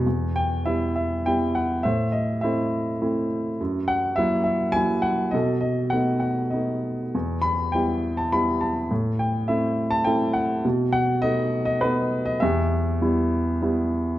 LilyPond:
<<
  \new Staff \with { instrumentName = "Grand piano" } { \time 3/4 \key e \minor \tempo 4 = 102 << { r8 g''8 e''8 e''8 g''8 fis''8 | e''8 dis''8 e''4. r8 | r8 fis''8 e''8 e''8 gis''8 fis''8 | dis''8 dis''8 fis''8 fis''8 dis''8. r16 |
r8 b''8 g''8. a''16 b''8 a''8 | r8 g''8 e''8. a''16 g''8 fis''8 | r8 fis''8 dis''8. dis''16 b'8. dis''16 | e''2~ e''8 r8 | } \\ { r2. | c''4 c''4. r8 | r2. | a'4. r4. |
r2. | r2. | r2. | g'2~ g'8 r8 | } >> }
  \new Staff \with { instrumentName = "Grand piano" } { \time 3/4 \key e \minor e,4 <g b e'>4 <g b e'>4 | a,4 <a c' e'>4 <a c' e'>4 | fis,4 <fis ais e'>4 <fis ais e'>4 | b,4 <a b dis'>4 <a b dis'>4 |
e,4 <g b e'>4 <g b e'>4 | a,4 <a c' e'>4 <a c' e'>4 | b,4 <a b dis'>4 <a b dis'>4 | e,4 <g b e'>4 <g b e'>4 | }
>>